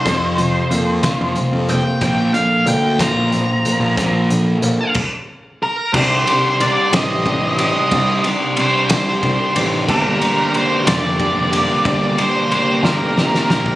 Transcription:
<<
  \new Staff \with { instrumentName = "Lead electric guitar" } { \time 6/8 \key c \minor \tempo 4. = 61 c''2 r8 g''8 | g''8 f''8 g''8 bes''4.~ | bes''4. r4 bes'8 | c''4 d''8 ees''4 ees''8~ |
ees''8 r8 c''8 c''4 r8 | bes'4 c''8 d''4. | d''8 c''8 c''8 bes'4 bes'8 | }
  \new Staff \with { instrumentName = "Transistor combo organ" } { \time 6/8 \key c \minor << { r2. | r2. | r2. | c'''2.~ |
c'''2. | <g' bes''>2.~ | <g' bes''>2. | } \\ { r2. | r2. | r2. | c''2.~ |
c''2.~ | c''2. | c''2. | } >> }
  \new Staff \with { instrumentName = "Clean electric guitar" } { \time 6/8 \key c \minor f,8 f8 bes8 f'8 c'8 bes8 | bes,8 d8 bes8 f'8 c'8 bes8 | bes,8 d8 bes8 r4. | <c ees g d' g'>8 <g d' g'>4 <c ees g d' g'>8 <ees g d' g'>8 <g d' g'>8 |
<c ees g d' g'>8 <g d' g'>4 <c ees g d' g'>8 <ees g d' g'>8 <g d' g'>8 | <g, d g bes d' g'>8 <g bes d' g'>4 <g, d g bes d' g'>8 <g bes d' g'>8 <g bes d' g'>8 | <g, d g bes d' g'>8 <g bes d' g'>4 <g, d g bes d' g'>8 <g bes d' g'>8 <g bes d' g'>8 | }
  \new Staff \with { instrumentName = "Distorted electric guitar" } { \clef bass \time 6/8 \key c \minor <f, c f>8 <f, c>8 r8 <f, c f>8 <f, c>8 <f, c>8 | <bes, f bes>8 <bes, f>8 r8 <bes, f bes>8 <bes, f>8 <bes, f>8 | <bes, f bes>8 <bes, f>8 r2 | <c g c'>8 <g c'>8 <c g c'>8 <g c'>8 <c g c'>8 <g c'>8 |
<c g c'>8 <g c'>8 <c g c'>8 <g c'>8 <c g c'>8 <g c' ees'>8 | <g, d g bes d'>8 <g bes d'>8 <d g bes d'>8 <g bes d'>8 <d g bes d'>8 <g bes d'>8 | <g, d g bes d'>8 <g bes d'>8 <d g bes d'>8 <g bes d'>8 <d g bes d'>8 <g d'>8 | }
  \new Staff \with { instrumentName = "Picked electric bass" } { \clef bass \time 6/8 \key c \minor f,4 f,8 r16 f,16 r16 f,8 r16 | bes,,8 r8 d,8. bes,,8 r8 bes,,16 | bes,,4 bes,,16 r4. r16 | c,8 r4 a,,8. a,,8 r16 |
c,8 r4 c,8 c,16 r16 a,,8 | g,,8 r4 f,,8. f,,8 r16 | g,,8 r4 g,,8 g,,16 r16 bes,,8 | }
  \new DrumStaff \with { instrumentName = "Drums" } \drummode { \time 6/8 <hh bd>8 hh8 hh8 <hh bd sn>8 hh8 hh8 | <hh bd>8 hh8 hh8 <hh bd sn>8 hh8 hh8 | <hh bd>8 hh8 hh8 <cymc bd>4. | <cymc bd>8 cymr8 cymr8 <cymr sn>8 <bd cymr>8 cymr8 |
<bd cymr>8 cymr8 cymr8 <cymr sn>8 <bd cymr>8 cymr8 | <cymc bd>8 cymr8 cymr8 <cymr sn>8 <bd cymr>8 cymr8 | <bd cymr>8 cymr8 cymr8 sn8 sn16 sn16 sn16 bd16 | }
>>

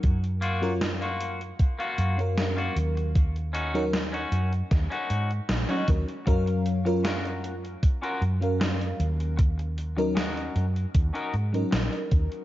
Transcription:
<<
  \new Staff \with { instrumentName = "Clean electric guitar" } { \time 4/4 \key fis \major \tempo 4 = 77 r8 <ais eis' fis'>8 r16 <ais eis' fis'>8 r8 <ais eis' fis'>8 r8 <ais eis' fis'>16 r8 | r8 <cis' dis' fis'>8 r16 <cis' dis' fis'>8 r8 <cis' dis' fis'>8 r8 <cis' dis' fis'>16 r8 | r4 <cis' eis' fis' ais'>8 r8. <cis' eis' fis' ais'>16 r4. | r4 <cis' dis' fis' ais'>8 r8. <cis' dis' fis' ais'>16 r4. | }
  \new Staff \with { instrumentName = "FM electric piano" } { \time 4/4 \key fis \major r8. <fis cis' eis' ais'>16 r4. r16 <fis cis' ais' eis''>4~ <fis cis' ais' eis''>16 | r8. <fis cis' dis' ais'>16 r2 r16 <fis cis' dis' dis''>16 <fis dis' ais'>16 r16 | <fis cis' ais' eis''>8. <fis cis' eis' ais'>16 r4. r16 <fis cis' ais' eis''>4~ <fis cis' ais' eis''>16 | r8. <fis cis' dis' ais'>16 r4. r16 <fis cis' dis' ais'>4~ <fis cis' dis' ais'>16 | }
  \new Staff \with { instrumentName = "Fretless electric bass" } { \clef bass \time 4/4 \key fis \major fis,2 r8 fis,4 dis,8~ | dis,4. fis,8 dis,8 gis,8 ais,,8 dis,8 | fis,2 r8 fis,4 dis,8~ | dis,4. fis,8 dis,8 gis,8 ais,,8 dis,8 | }
  \new DrumStaff \with { instrumentName = "Drums" } \drummode { \time 4/4 <hh bd>16 hh16 hh16 hh16 <hh sn>16 hh16 hh16 hh16 <hh bd>16 hh16 hh16 hh16 <hh sn>16 hh16 hh16 hh16 | <hh bd>16 hh16 hh16 hh16 <hh sn>16 hh16 hh16 hh16 <hh bd sn>16 hh16 hh16 hh16 <hh sn>16 hh16 <hh bd>16 hh16 | <hh bd>16 hh16 hh16 hh16 <hh sn>16 hh16 hh16 hh16 <hh bd>16 hh16 hh16 hh16 <hh sn>16 hh16 hh16 hh16 | <hh bd>16 hh16 hh16 hh16 <hh sn>16 hh16 hh16 hh16 <hh bd>16 hh16 hh16 hh16 <hh sn>16 hh16 <hh bd>16 hh16 | }
>>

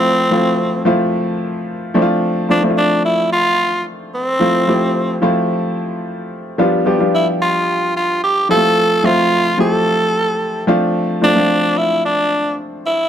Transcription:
<<
  \new Staff \with { instrumentName = "Tenor saxophone" } { \time 4/4 \key f \lydian \tempo 4 = 110 c'4. r2 r8 | r8 d'8 d'8 e'8 f'4 r8 c'8~ | c'4. r2 r8 | r4 e'8 f'4 f'8 g'8 a'8~ |
a'8 f'4 a'2 r8 | r8 d'4 e'8 d'4 r8 e'8 | }
  \new Staff \with { instrumentName = "Grand piano" } { \time 4/4 \key f \lydian <f a c' e' f'>16 r16 <f a c' e' f'>8. r16 <f a c' e' f'>4. r8 <f a c' d' e' f'>8~ | <f a c' d' e' f'>16 r16 <f a c' d' f'>16 <f a c' d' e' f'>4. r4. r16 | <f a c' e' f'>8 <f a c' e' g'>8. r16 <f a c' e' f'>4. r4 | <f g b d' f'>8 <f g b d' g'>16 <f g b d' f'>4. r4 r16 <f g a c' e' f'>8~ |
<f g a c' e' f'>16 r16 <f a c' f' e''>8. r16 <f a c' e' g'>4. r8 <f a c' d' f'>8~ | <f a c' d' f'>16 r16 <f a c' d' f'>16 <f a c' d' f'>4. r4. r16 | }
>>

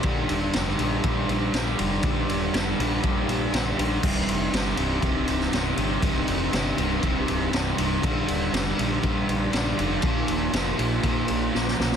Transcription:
<<
  \new Staff \with { instrumentName = "Distorted electric guitar" } { \clef bass \time 4/4 \key g \phrygian \tempo 4 = 120 <g, d g>4 <g, d g>8 <g, d g>8 <g, d g>4 <g, d g>8 <g, d g>8 | <g, d g>4 <g, d g>8 <g, d g>8 <g, d g>4 <g, d g>8 <g, d g>8 | <c, g, c>4 <c, g, c>8 <c, g, c>8 <c, g, c>4 <c, g, c>8 <c, g, c>8 | <c, g, c>4 <c, g, c>8 <c, g, c>8 <c, g, c>4 <c, g, c>8 <c, g, c>8 |
<g, d g>4 <g, d g>8 <g, d g>8 <g, d g>4 <g, d g>8 <g, d g>8 | <bes, f bes>4 <bes, f bes>8 <bes, f bes>8 <bes, f bes>4 <bes, f bes>8 <bes, f bes>8 | }
  \new Staff \with { instrumentName = "Overdriven electric guitar" } { \clef bass \time 4/4 \key g \phrygian <g, d g>4 <g, d g>8 <g, d g>8 <g, d g>4 <g, d g>8 <g, d g>8 | <g, d g>4 <g, d g>8 <g, d g>8 <g, d g>4 <g, d g>8 <g, d g>8 | <c, g, c>4 <c, g, c>8 <c, g, c>8 <c, g, c>4 <c, g, c>8 <c, g, c>8 | <c, g, c>4 <c, g, c>8 <c, g, c>8 <c, g, c>4 <c, g, c>8 <c, g, c>8 |
<g, d g>4 <g, d g>8 <g, d g>8 <g, d g>4 <g, d g>8 <g, d g>8 | <bes, f bes>4 <bes, f bes>8 <bes, f bes>8 <bes, f bes>4 <bes, f bes>8 <bes, f bes>8 | }
  \new Staff \with { instrumentName = "Picked electric bass" } { \clef bass \time 4/4 \key g \phrygian bes,,8 ees,,8 f,,8 bes,,8 bes,,8 bes,,8 bes,,8 f,,8 | bes,,8 ees,,8 f,,8 bes,,8 bes,,8 bes,,8 bes,,8 bes,,8 | c,,8 f,,8 g,,8 c,,8 c,,8 c,,8 c,,8 g,,8 | c,,8 f,,8 g,,8 c,,8 c,,8 c,,8 c,,8 c,,8 |
bes,,8 ees,,8 f,,8 bes,,8 bes,,8 bes,,8 bes,,8 f,,8 | bes,,8 ees,,8 f,,8 bes,,8 bes,,8 bes,,8 bes,,8 b,,8 | }
  \new DrumStaff \with { instrumentName = "Drums" } \drummode { \time 4/4 <bd cymr>8 cymr8 <cymr sn>8 cymr8 <bd cymr>8 cymr8 <cymr sn>8 cymr8 | <bd cymr>8 cymr8 <cymr sn>8 cymr8 <bd cymr>8 cymr8 <cymr sn>8 cymr8 | <cymc bd>8 cymr8 <cymr sn>8 cymr8 <bd cymr>8 cymr16 sn16 <cymr sn>8 cymr8 | <bd cymr>8 cymr8 <cymr sn>8 cymr8 <bd cymr>8 cymr8 <cymr sn>8 cymr8 |
<bd cymr>8 cymr8 <cymr sn>8 cymr8 <bd cymr>8 cymr8 <cymr sn>8 cymr8 | <bd cymr>8 cymr8 <cymr sn>8 cymr8 <bd cymr>8 cymr8 sn16 sn16 sn16 sn16 | }
>>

